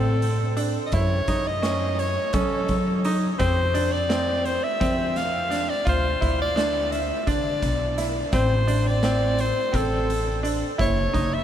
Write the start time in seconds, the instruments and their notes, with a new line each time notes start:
Already playing: upright bass A2, grand piano C4, soprano saxophone A4
0.22 closed hi-hat
0.57 grand piano D4, closed hi-hat
0.86 soprano saxophone D#5
0.92 upright bass F#2, grand piano E4, soprano saxophone C#5, kick, closed hi-hat
1.28 upright bass F#2, grand piano D#4, kick, closed hi-hat
1.47 soprano saxophone D#5
1.62 grand piano C#4, snare, closed hi-hat
1.99 soprano saxophone C#5, closed hi-hat
2.33 upright bass F#3, grand piano C#4, soprano saxophone A4, kick, closed hi-hat
2.68 upright bass F#3, kick, closed hi-hat
3.04 grand piano D#4, closed hi-hat
3.39 upright bass F2, grand piano C4, soprano saxophone C5, kick, closed hi-hat
3.74 grand piano D4, closed hi-hat
3.92 soprano saxophone D5
4.09 grand piano C4, snare, closed hi-hat
4.45 soprano saxophone C5, closed hi-hat
4.63 soprano saxophone E5
4.80 upright bass F2, grand piano C4, kick, closed hi-hat
5.16 soprano saxophone F5, snare, closed hi-hat
5.50 grand piano D4, snare, closed hi-hat
5.70 soprano saxophone D5
5.85 upright bass D2, grand piano F4, soprano saxophone C5, kick, closed hi-hat
6.21 upright bass D2, grand piano E4, kick, closed hi-hat
6.42 soprano saxophone D5
6.56 grand piano D4, snare, closed hi-hat
6.92 soprano saxophone E5, closed hi-hat
7.27 upright bass D3, grand piano D4, soprano saxophone D5, kick, closed hi-hat
7.62 upright bass B1, kick, snare, closed hi-hat
7.98 grand piano E4, snare, closed hi-hat
8.33 upright bass A1, grand piano C4, soprano saxophone C5, kick, closed hi-hat
8.67 grand piano D4, closed hi-hat
8.88 soprano saxophone D5
9.03 grand piano C4, snare, closed hi-hat
9.38 soprano saxophone C5, closed hi-hat
9.72 upright bass A1, grand piano C4, soprano saxophone A4, kick, closed hi-hat
10.10 closed hi-hat
10.43 grand piano D4, closed hi-hat
10.78 upright bass F#1, grand piano E4, soprano saxophone C#5, kick, closed hi-hat
11.13 upright bass F#1, grand piano D#4, kick, closed hi-hat
11.34 soprano saxophone E5